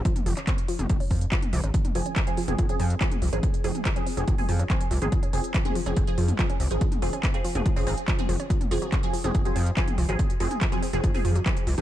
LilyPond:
<<
  \new Staff \with { instrumentName = "Synth stab" } { \time 4/4 \key f \minor \tempo 4 = 142 r1 | r8 <f c' aes'>8 r16 <f c' aes'>16 r16 <f c' aes'>8 <f c' aes'>8 r16 <f c' aes'>8 r16 <f c' aes'>16 | r8 <f c' aes'>8 r16 <f c' aes'>16 r16 <f c' aes'>8 <f c' aes'>8 r16 <f c' aes'>8 r16 <f c' aes'>16 | r8 <f c' aes'>8 r16 <f c' aes'>16 r16 <f c' aes'>8 <f c' aes'>8 r16 <f c' aes'>8 r16 <f c' aes'>16 |
r8 <f c' aes'>8 r16 <f c' aes'>16 r16 <f c' aes'>8 <f c' aes'>16 <f c' aes'>16 r8 <f c' aes'>16 r8 | r8 <f c' aes'>8 r16 <f c' aes'>16 r16 <f c' aes'>8 <f c' aes'>8 r16 <f c' aes'>8 r16 <f c' aes'>16 | r8 <f c' aes'>8 r16 <f c' aes'>16 r16 <f c' aes'>8 <f c' aes'>8 r16 <f c' aes'>8 r16 <f c' aes'>16 | }
  \new Staff \with { instrumentName = "Synth arpeggio sound" } { \clef bass \time 4/4 \key f \minor f16 r16 f16 des'16 c'16 r16 f16 r16 f16 des'16 c'16 r16 f16 r16 f16 des'16 | f16 r16 f16 des'16 c'16 r16 f16 r16 f16 des'16 c'16 r16 f16 r16 f16 des'16 | c'16 r16 f16 r16 f16 des'16 c'16 r16 f16 r16 f16 des'16 c'16 r16 f16 r16 | f16 des'16 c'16 r16 f16 r16 f16 des'16 c'16 r16 f16 r16 f16 des'16 c'16 r16 |
f16 r16 f16 des'16 c'16 r16 f16 r16 f16 des'16 c'16 r16 f16 r16 f16 des'16 | f16 r16 f16 ges16 c'16 r16 f16 r16 f16 ges16 c'16 r16 f16 r16 f16 ges16 | c'16 r16 f16 r16 f16 ges16 c'16 r16 f16 r16 f16 ges16 c'16 r16 f16 r16 | }
  \new Staff \with { instrumentName = "Analog synth bass" } { \clef bass \time 4/4 \key f \minor r8 f,,16 r4 f,,16 f,,16 r16 f,16 r8. c,16 aes,,16 | r8 f,,16 r4 f,,16 f,,16 r16 f,16 r8. c,16 aes,,16 | r8 f,,16 r4 f,,16 f,,16 r16 f,16 r8. c,16 aes,,16 | r8 f,,16 r4 f,,16 f,,16 r16 f,16 r8. c,16 aes,,16 |
r8 f,,16 r4 f,,16 r16 f,,16 aes,,16 r8. f,,16 r16 | r8 f,,16 r4 f,,16 f,,16 r16 f,16 r8. c,16 aes,,16 | r8 f,,16 r4 f,,16 f,,16 r16 f,16 r8. c,16 aes,,16 | }
  \new DrumStaff \with { instrumentName = "Drums" } \drummode { \time 4/4 <hh bd>16 <hh toml>16 hho16 <hc hh>16 <hc hh bd>16 hh16 hho16 <hh toml>16 <hh bd>16 hho16 <hho bd>16 hh16 <hc hh bd>16 <hh toml>16 hho16 hh16 | <hh bd>16 <hh toml>16 hho16 hh16 <hc hh bd>16 hh16 hho16 <hh toml>16 <hh bd>16 hh16 hho16 hh16 <hc hh bd>16 <hh toml>16 hho16 hh16 | <hh bd>16 hh16 hho16 <hh toml>16 <hc hh bd>16 hh16 hho16 hh16 <hh bd>16 <hho toml>16 hho16 hh16 <hc hh bd>16 hh16 hho16 <hh toml>16 | <hh bd>16 hh16 hho16 hh16 <hc hh bd>16 <hh toml>16 hho16 hh16 <hh bd>16 hh16 hho16 <hh toml>16 <hc hh bd>16 hh16 hho16 hh16 |
<hh bd>16 <hh toml>16 hho16 hh16 <hc hh bd>16 hh16 hho16 <hh toml>16 <hh bd>16 hho16 hho16 hh16 <hc hh bd>16 <hh toml>16 hho16 hh16 | <hh bd>16 <hh toml>16 hho16 hh16 <hc hh bd>16 hh16 hho16 <hh toml>16 <hh bd>16 hh16 hho16 hh16 <hc hh bd>16 <hh toml>16 hho16 hh16 | <hh bd>16 hh16 hho16 <hh toml>16 <hc hh bd>16 hh16 hho16 hh16 <hh bd>16 <hho toml>16 hho16 hh16 <hc hh bd>16 hh16 hho16 <hh toml>16 | }
>>